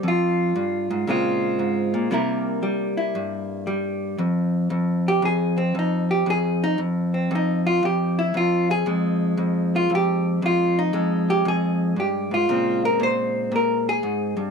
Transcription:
0.03 0.55 F2 medium
0.08 1.09 F4 medium
0.56 0.90 G2 medium
0.91 1.07 G#2 medium
1.07 1.59 A#2 medium
1.07 1.93 C#3 medium
1.07 2.12 G#3 medium
1.07 2.13 C4 medium
1.07 2.13 F4 medium
1.59 1.94 G#2 medium
1.94 2.10 A#2 medium
2.11 3.15 C3 medium
2.11 2.61 G3 medium
2.11 4.17 A#3 medium
2.11 2.96 E4 medium
2.11 4.18 A#4 medium
2.63 3.66 G3 medium
2.97 4.17 E4 medium
3.15 4.17 G2 medium
3.67 4.17 G3 medium
4.18 4.70 F2 medium
4.70 5.22 F2 medium
5.08 5.24 G4 medium
5.22 5.74 F2 medium
5.22 5.58 G#4 medium
5.58 5.75 C4 medium
5.75 6.26 F2 medium
5.79 6.11 D#4 medium
6.11 6.27 G4 medium
6.26 6.78 F2 medium
6.26 6.63 G#4 medium
6.64 6.80 D#4 medium
6.78 7.30 F2 medium
7.14 7.35 C4 soft
7.31 7.82 F2 medium
7.35 7.67 D#4 medium
7.67 7.83 F4 medium
7.83 8.34 F2 medium
7.83 8.18 G4 medium
8.19 8.35 E4 medium
8.34 8.86 F2 medium
8.34 8.70 F4 medium
8.71 8.87 G#4 medium
8.86 9.37 F2 medium
8.86 10.93 G#3 soft
9.37 9.89 F2 medium
9.76 9.91 F4 medium
9.90 10.41 F2 medium
9.95 10.44 G4 medium
10.42 10.92 F2 medium
10.42 10.78 F4 medium
10.79 11.29 D#4 medium
10.93 11.44 F2 medium
10.93 12.50 G#3 soft
11.30 11.46 G4 medium
11.45 11.96 F2 medium
11.45 11.98 G#4 medium
11.96 12.31 G2 medium
11.96 12.33 G4 medium
12.31 12.49 G#2 medium
12.31 12.84 F4 medium
12.49 12.98 A#2 medium
12.49 14.51 C#3 soft
12.49 14.51 G#3 soft
12.49 14.51 C4 soft
12.85 13.01 A#4 medium
13.00 13.50 A#2 medium
13.00 13.53 C5 medium
13.52 14.03 A#2 medium
13.56 13.88 A#4 medium
13.89 14.39 G#4 medium
14.03 14.36 G#2 medium
14.37 14.51 G2 medium

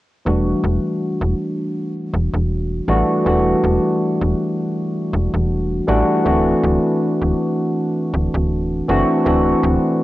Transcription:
0.25 0.53 E1 loud
0.25 2.84 E3 medium
0.25 2.84 G3 medium
0.25 2.85 A3 medium
0.25 2.85 D4 medium
0.25 2.85 F#4 medium
0.64 0.78 E1 loud
1.21 1.33 E1 medium
2.14 2.28 E1 medium
2.34 2.80 E1 medium
2.88 3.03 A1 medium
2.88 3.22 E3 medium
2.88 3.22 G3 medium
2.88 3.22 A3 medium
2.88 3.22 D4 medium
2.88 3.23 F#4 medium
3.25 3.54 E1 loud
3.25 5.84 E3 medium
3.25 5.84 G3 medium
3.25 5.85 A3 medium
3.25 5.85 D4 medium
3.25 5.85 F#4 medium
3.64 3.78 E1 loud
4.21 4.34 E1 medium
5.13 5.28 E1 medium
5.34 5.80 E1 medium
5.87 6.03 A1 medium
5.87 6.22 E3 medium
5.87 6.22 G3 medium
5.87 6.22 A3 medium
5.87 6.22 D4 medium
5.87 6.22 F#4 loud
6.25 6.54 D1 loud
6.25 8.84 E3 medium
6.25 8.84 A3 medium
6.25 8.85 C4 medium
6.25 8.85 D4 medium
6.25 8.85 F#4 medium
6.64 6.78 D1 loud
7.21 7.34 D1 medium
8.13 8.28 D1 medium
8.34 8.81 D1 loud
8.88 9.03 F#1 medium
8.88 9.22 E3 medium
8.88 9.22 A3 medium
8.88 9.22 C4 medium
8.88 9.22 D4 medium
8.88 9.22 F#4 loud
9.24 9.53 D1 loud
9.24 10.04 E3 medium
9.24 10.04 A3 medium
9.24 10.04 C4 medium
9.24 10.04 D4 medium
9.24 10.04 F#4 medium
9.63 9.78 D1 loud

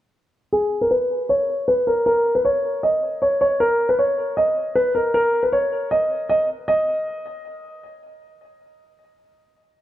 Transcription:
0.53 0.80 G#4 loud
0.81 0.90 A#4 medium
0.91 1.27 B4 medium
1.29 1.65 C#5 medium
1.68 1.85 B4 medium
1.87 2.04 A#4 medium
2.06 2.33 A#4 loud
2.35 2.44 B4 medium
2.45 2.81 C#5 medium
2.83 3.19 D#5 medium
3.22 3.39 C#5 medium
3.41 3.58 C#5 medium
3.60 3.87 A#4 loud
3.89 3.98 B4 medium
3.99 4.35 C#5 medium
4.37 4.73 D#5 medium
4.75 4.93 B4 medium
4.95 5.12 A#4 medium
5.14 5.41 A#4 loud
5.43 5.51 B4 medium
5.52 5.89 C#5 medium
5.91 6.27 D#5 medium
6.29 6.47 D#5 medium
6.68 7.79 D#5 medium

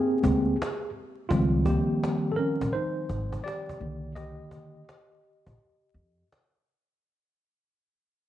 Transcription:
0.00 0.22 A#3 soft
0.00 0.22 C4 medium
0.00 1.26 G4 medium
0.00 0.89 G#4 medium
0.23 0.51 D2 medium
0.23 0.55 G#3 soft
0.23 0.55 A#3 soft
0.23 0.55 C4 soft
0.23 cajon bass medium
0.62 cajon slap loud
1.29 1.75 C#2 loud
1.29 3.76 D#3 soft
1.29 3.76 F3 soft
1.29 3.76 G3 soft
1.29 1.64 G#3 medium
1.29 3.77 C4 medium
1.29 1.66 F4 medium
1.29 cajon bass loud
1.66 2.29 A#3 medium
1.66 2.34 G4 medium
1.66 cajon bass medium
2.04 cajon slap medium
2.32 2.37 A4 medium
2.36 2.71 C#4 medium
2.36 2.74 A#4 medium
2.36 cajon slap soft
2.61 2.71 A#1 medium
2.61 cajon bass medium
2.73 3.41 D#4 medium
2.73 3.46 C5 medium
2.73 cajon slap soft
3.09 3.36 G#1 medium
3.09 cajon bass medium
3.32 cajon bass medium
3.44 4.13 G4 medium
3.44 4.11 D5 medium
3.44 cajon slap medium
3.69 cajon bass medium
3.80 4.34 C2 medium
3.80 4.84 D3 medium
3.80 4.83 D#3 soft
3.80 4.84 A#3 soft
4.15 6.27 G4 medium
4.15 6.26 D#5 medium
4.15 cajon bass loud
4.51 cajon bass medium
4.89 cajon slap medium
5.11 cajon slap soft
5.24 cajon slap soft
5.46 5.56 A#1 medium
5.46 cajon bass medium
5.58 cajon slap soft
5.94 6.21 F2 medium
6.18 cajon slap soft
6.32 cajon slap medium

